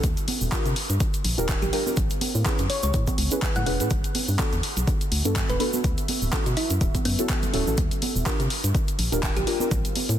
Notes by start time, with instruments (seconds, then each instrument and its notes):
0.03 fm bass D#2, ambient pad G4, kick, closed hi-hat, low conga, shaker
0.17 closed hi-hat, shaker
0.28 open hi-hat, high conga
0.32 ambient pad C5
0.41 fm bass D#1, shaker
0.51 synth stab D4 F4 G4 A#4, kick, clap, closed hi-hat, shaker
0.66 fm bass C3, closed hi-hat, shaker
0.76 open hi-hat
0.90 fm bass G2, closed hi-hat, shaker
1.00 kick, closed hi-hat, shaker
1.14 closed hi-hat, shaker
1.25 fm bass A#1, open hi-hat
1.38 fm bass D#1, synth stab D4 F4 G4 A#4, closed hi-hat, shaker
1.49 kick, clap, closed hi-hat, shaker
1.62 fm bass A#1, synth pluck G4, closed hi-hat, low conga, shaker
1.72 synth stab D4 F4 G4 A#4, synth pluck G4, open hi-hat
1.86 synth stab D4 F4 G4 A#4, high conga, shaker
1.96 fm bass A1, ambient pad G#4, kick, closed hi-hat, low conga, shaker
2.10 closed hi-hat, shaker
2.21 ambient pad C#5, open hi-hat, high conga
2.35 fm bass A2, shaker
2.45 synth stab C#4 E4 G#4 B4, kick, clap, closed hi-hat, shaker
2.58 fm bass F#2, closed hi-hat, shaker
2.70 synth pluck C#5, ambient pad F#5, open hi-hat
2.83 fm bass C#2, synth pluck C#5, closed hi-hat, shaker
2.93 fm bass A2, kick, closed hi-hat, shaker
3.07 kick, closed hi-hat, high conga, shaker
3.18 fm bass C#2, open hi-hat
3.31 synth stab C#4 E4 G#4 B4, closed hi-hat, shaker
3.42 kick, clap, closed hi-hat, shaker
3.55 fm bass A2, synth pluck F#5, closed hi-hat, low conga, shaker
3.66 fm bass E1, synth stab C#4 E4 G#4 B4, synth pluck F#5, open hi-hat
3.80 fm bass A2, synth stab C#4 E4 G#4 B4, closed hi-hat, shaker
3.90 fm bass G1, ambient pad F#4, kick, closed hi-hat, low conga, shaker
4.04 closed hi-hat, shaker
4.15 open hi-hat, high conga
4.28 fm bass G2, ambient pad E5, shaker
4.38 synth stab B3 D4 F#4 A4, ambient pad B4, kick, clap, closed hi-hat, shaker
4.53 fm bass E2, closed hi-hat, shaker
4.63 open hi-hat
4.77 fm bass B1, closed hi-hat, shaker
4.87 kick, closed hi-hat, shaker
5.01 closed hi-hat, shaker
5.12 fm bass D2, open hi-hat
5.25 fm bass G2, synth stab B3 D4 F#4 A4, closed hi-hat, shaker
5.36 kick, clap, closed hi-hat, shaker
5.49 fm bass D1, synth pluck B4, closed hi-hat, low conga, shaker
5.60 synth stab B3 D4 F#4 A4, synth pluck B4, open hi-hat
5.73 synth stab B3 D4 F#4 A4, high conga, shaker
5.84 fm bass D2, kick, closed hi-hat, low conga, shaker
5.98 closed hi-hat, shaker
6.08 open hi-hat, high conga
6.22 fm bass D1, shaker
6.32 synth stab C#4 E4 F#4 A4, kick, clap, closed hi-hat, shaker
6.46 fm bass B2, closed hi-hat, shaker
6.57 synth pluck E4, open hi-hat
6.70 fm bass F#2, closed hi-hat, shaker
6.81 fm bass D1, kick, closed hi-hat, shaker
6.94 kick, closed hi-hat, high conga, shaker
7.05 fm bass F#2, synth pluck B3, open hi-hat
7.18 synth stab C#4 E4 F#4 A4, closed hi-hat, shaker
7.29 kick, clap, closed hi-hat, shaker
7.43 closed hi-hat, low conga, shaker
7.53 fm bass D1, synth stab C#4 E4 F#4 A4, open hi-hat
7.67 fm bass A1, synth stab C#4 E4 F#4 A4, shaker
7.77 fm bass D#2, ambient pad G4, kick, closed hi-hat, low conga, shaker
7.91 closed hi-hat, shaker
8.02 open hi-hat, high conga
8.16 fm bass D#1, shaker
8.26 synth stab D4 F4 G4 A#4, kick, clap, closed hi-hat, shaker
8.40 fm bass C3, closed hi-hat, shaker
8.50 open hi-hat
8.64 fm bass G2, closed hi-hat, shaker
8.75 kick, closed hi-hat, shaker
8.88 closed hi-hat, shaker
8.99 fm bass A#1, open hi-hat
9.12 fm bass D#1, synth stab D4 F4 G4 A#4, closed hi-hat, shaker
9.23 kick, clap, closed hi-hat, shaker
9.36 fm bass A#1, synth pluck G4, closed hi-hat, low conga, shaker
9.47 synth stab D4 F4 G4 A#4, synth pluck G4, open hi-hat
9.60 synth stab D4 F4 G4 A#4, high conga, shaker
9.71 fm bass A1, ambient pad G#4, kick, closed hi-hat, low conga, shaker
9.85 closed hi-hat, shaker
9.96 open hi-hat, high conga
10.09 fm bass A2, closed hi-hat, shaker